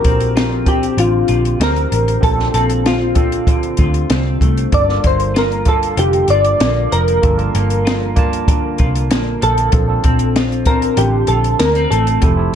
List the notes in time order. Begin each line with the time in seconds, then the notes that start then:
Already playing: F3 C4 D4 F4 F#4 G4 A#4
0.04 A#1 C4, kick, closed hi-hat
0.20 closed hi-hat
0.36 F4, snare, closed hi-hat
0.66 C4 D4 F4 G4, kick, closed hi-hat
0.83 closed hi-hat
0.98 A1 D3 F4, closed hi-hat
1.28 A#1 F4, closed hi-hat
1.45 closed hi-hat
1.60 D2 C4 A#4, snare, closed hi-hat
1.76 closed hi-hat
1.92 A1, closed hi-hat
2.08 closed hi-hat
2.20 A#1 A#2 C4 D4 F4 A4, kick, closed hi-hat
2.36 A#3 C4 D4 F4, snare
2.54 A#1 C4 A4, closed hi-hat
2.70 closed hi-hat
2.86 F4, snare, closed hi-hat
3.15 C4 D4 F4 A4, kick, closed hi-hat
3.32 closed hi-hat
3.47 D3, kick, closed hi-hat
3.63 closed hi-hat
3.77 D2 F4, kick, closed hi-hat
3.94 closed hi-hat
4.10 C2 C4, snare, closed hi-hat
4.41 C2 A3, kick, closed hi-hat
4.57 closed hi-hat
4.72 G1 G2 A#3 D4 F4 A4 D5, kick, closed hi-hat
4.88 A#3 D4 F4 A4, snare
5.04 G1 A#3 C5, kick, closed hi-hat
5.20 closed hi-hat
5.34 F4 A#4, snare, closed hi-hat
5.52 closed hi-hat
5.65 A#3 D4 F4 A4, kick, closed hi-hat
5.83 closed hi-hat
5.97 F1 D3 G4, closed hi-hat
6.13 closed hi-hat
6.28 G1 F4 D5, closed hi-hat
6.45 closed hi-hat
6.60 A#1 A#3, snare, closed hi-hat
6.91 F1 F3 A#4, closed hi-hat
7.08 closed hi-hat
7.22 G1 G2 A#3 D4 F4 A4, kick, closed hi-hat
7.38 A#3 D4 F4 A5, closed hi-hat
7.55 G1 A#3, closed hi-hat
7.70 closed hi-hat
7.85 F4, snare, closed hi-hat
8.16 A#3 D4 F4 A5, kick, closed hi-hat
8.33 closed hi-hat
8.48 D3, kick, closed hi-hat
8.78 C2 F4, kick, closed hi-hat
8.95 closed hi-hat
9.11 A#1 A#3, snare, closed hi-hat
9.42 A#1 F3 A4, closed hi-hat
9.58 closed hi-hat
9.72 A#1 C4 D4 F4 A4, kick, closed hi-hat
9.88 C4 D4 F4 A4
10.04 A#1 C4, kick, closed hi-hat
10.19 closed hi-hat
10.36 F4, snare, closed hi-hat
10.52 closed hi-hat
10.66 C4 D4 F4 A#4 A5, kick, closed hi-hat
10.82 closed hi-hat
10.97 A1 D3 G4, closed hi-hat
11.27 A#1 F4 A4, closed hi-hat
11.44 closed hi-hat
11.59 D2 A#3 A#4, snare, closed hi-hat
11.75 C4, closed hi-hat
11.90 A1 A3 A4, closed hi-hat
12.07 closed hi-hat
12.22 F1 F3 C4 E4 G4 A4, kick, closed hi-hat
12.37 C4 E4 G4 A4